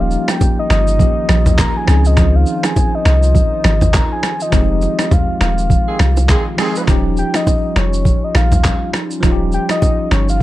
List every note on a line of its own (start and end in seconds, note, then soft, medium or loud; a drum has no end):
0.00 0.17 D#1 loud
0.00 4.49 D#3 medium
0.00 0.96 F3 medium
0.00 1.84 G3 medium
0.00 0.97 A#3 medium
0.00 0.97 C#4 medium
0.00 0.98 D#4 medium
0.00 4.49 D#4 medium
0.00 6.84 F4 medium
0.00 0.99 G4 medium
0.00 0.31 F5 medium
0.11 shaker medium
0.28 0.59 G5 medium
0.28 finger snap medium
0.28 cross-stick loud
0.28 low bongo medium
0.28 shaker medium
0.41 kick loud
0.41 high bongo medium
0.41 low bongo medium
0.41 shaker medium
0.59 0.70 D#5 medium
0.70 1.05 G1 loud
0.70 1.55 D#5 loud
0.70 finger snap medium
0.70 cross-stick loud
0.70 shaker soft
0.87 shaker medium
0.99 1.84 F3 medium
0.99 1.88 A#3 soft
0.99 1.87 C#4 soft
0.99 1.88 D#4 soft
0.99 1.89 G4 medium
0.99 kick loud
0.99 low conga medium
0.99 shaker medium
1.29 1.64 A#1 medium
1.29 finger snap medium
1.29 cross-stick loud
1.29 low conga medium
1.29 shaker medium
1.46 mid tom medium
1.46 low bongo medium
1.46 shaker medium
1.58 1.75 A#5 loud
1.58 finger snap medium
1.58 kick medium
1.58 cross-stick medium
1.58 clap medium
1.58 high bongo medium
1.58 shaker medium
1.77 2.08 G#5 medium
1.85 2.45 C#2 loud
1.85 4.18 F3 medium
1.85 4.19 C4 medium
1.85 4.19 C#4 medium
1.85 4.20 D#4 medium
1.85 4.50 C5 medium
1.85 finger snap medium
1.85 cross-stick loud
1.85 shaker medium
1.91 4.21 G#4 medium
2.05 2.37 D#5 medium
2.05 shaker medium
2.17 finger snap medium
2.17 kick loud
2.17 cross-stick loud
2.17 low conga medium
2.17 shaker medium
2.36 2.67 F5 medium
2.46 shaker medium
2.63 2.96 G#5 medium
2.63 finger snap medium
2.63 cross-stick medium
2.63 low bongo medium
2.63 shaker medium
2.76 kick loud
2.76 high bongo medium
2.76 low bongo medium
2.76 shaker medium
2.95 3.06 D#5 medium
3.05 3.40 C2 loud
3.05 3.97 D#5 medium
3.05 finger snap medium
3.05 cross-stick loud
3.05 shaker medium
3.23 shaker medium
3.35 kick loud
3.35 low conga medium
3.35 shaker medium
3.64 3.99 G#1 loud
3.64 finger snap medium
3.64 cross-stick loud
3.64 low conga medium
3.64 shaker medium
3.81 mid tom medium
3.81 low bongo medium
3.81 shaker medium
3.93 4.12 A#5 loud
3.93 finger snap medium
3.93 kick medium
3.93 cross-stick medium
3.93 clap medium
3.93 high bongo medium
3.93 shaker medium
4.12 4.43 G#5 medium
4.23 finger snap medium
4.23 cross-stick loud
4.23 shaker medium
4.40 5.14 D#5 medium
4.40 shaker medium
4.50 4.87 F1 loud
4.50 6.86 D#3 medium
4.50 6.53 F3 medium
4.50 4.60 G3 medium
4.50 6.86 G#3 medium
4.50 6.55 C4 medium
4.50 6.55 D#4 medium
4.50 6.86 G4 medium
4.50 finger snap medium
4.50 kick loud
4.50 cross-stick medium
4.50 low conga medium
4.50 shaker medium
4.55 6.57 G#3 medium
4.55 6.56 G4 medium
4.81 low bongo medium
4.81 shaker medium
4.99 finger snap medium
4.99 cross-stick loud
4.99 low bongo medium
4.99 shaker medium
5.11 5.42 F5 medium
5.11 kick loud
5.11 mid tom medium
5.11 high bongo medium
5.11 low bongo medium
5.11 shaker medium
5.41 5.76 D#1 loud
5.41 6.55 F5 medium
5.41 finger snap medium
5.41 cross-stick loud
5.41 shaker medium
5.58 shaker medium
5.70 kick loud
5.70 low conga medium
5.70 shaker medium
5.88 5.98 D#3 medium
5.88 5.98 C4 medium
5.88 5.98 G#4 medium
5.99 6.35 C2 medium
5.99 finger snap medium
5.99 cross-stick loud
5.99 low conga medium
5.99 shaker medium
6.17 low bongo medium
6.17 shaker medium
6.29 6.44 D#3 medium
6.29 6.44 C4 medium
6.29 6.44 G#4 loud
6.29 finger snap medium
6.29 kick medium
6.29 cross-stick medium
6.29 clap medium
6.29 high bongo medium
6.29 shaker medium
6.57 6.84 D#3 loud
6.57 6.84 F3 medium
6.57 6.88 G#3 medium
6.57 6.88 C4 medium
6.57 6.84 C4 loud
6.57 6.88 D#4 medium
6.57 6.89 F4 medium
6.57 6.84 G#4 loud
6.57 finger snap medium
6.57 cross-stick loud
6.57 open hi-hat medium
6.57 shaker medium
6.75 shaker medium
6.85 7.23 D#1 loud
6.85 9.18 F3 medium
6.85 10.43 G3 medium
6.85 9.19 C#4 medium
6.85 10.43 C#4 medium
6.85 10.43 D#4 medium
6.85 9.20 D#4 medium
6.85 10.43 F4 medium
6.85 finger snap medium
6.85 kick loud
6.85 cross-stick medium
6.85 low conga medium
6.85 shaker medium
6.90 9.21 G4 medium
7.17 7.37 G5 loud
7.17 shaker medium
7.34 7.79 D#5 loud
7.34 finger snap medium
7.34 cross-stick medium
7.34 low bongo medium
7.34 shaker medium
7.47 kick medium
7.47 high bongo medium
7.47 low bongo medium
7.47 shaker medium
7.76 8.11 F1 medium
7.76 8.26 C#5 loud
7.76 finger snap medium
7.76 cross-stick medium
7.76 shaker soft
7.93 shaker medium
8.05 kick loud
8.05 low conga medium
8.05 shaker medium
8.24 8.36 D#5 medium
8.35 8.70 A#1 medium
8.35 8.91 F5 medium
8.35 finger snap medium
8.35 cross-stick loud
8.35 high bongo medium
8.35 low conga medium
8.35 shaker medium
8.52 mid tom medium
8.52 low bongo medium
8.52 shaker medium
8.64 finger snap medium
8.64 kick medium
8.64 cross-stick medium
8.64 clap medium
8.64 high bongo medium
8.64 shaker medium
8.93 finger snap medium
8.93 cross-stick loud
8.93 shaker medium
9.11 shaker medium
9.21 9.58 D#1 loud
9.21 10.43 F3 medium
9.21 10.43 C#4 medium
9.21 10.43 D#4 medium
9.21 finger snap medium
9.21 kick loud
9.21 cross-stick medium
9.21 low conga medium
9.21 shaker medium
9.26 9.32 F4 medium
9.32 10.43 G4 medium
9.52 9.69 G5 loud
9.52 shaker medium
9.69 10.09 D#5 loud
9.69 finger snap medium
9.69 cross-stick medium
9.69 low bongo medium
9.69 shaker medium
9.82 kick loud
9.82 high bongo medium
9.82 low bongo medium
9.82 shaker medium
10.11 10.43 G1 medium
10.11 10.28 C#5 medium
10.11 finger snap medium
10.11 cross-stick medium
10.11 shaker soft
10.29 10.43 F5 loud
10.29 shaker medium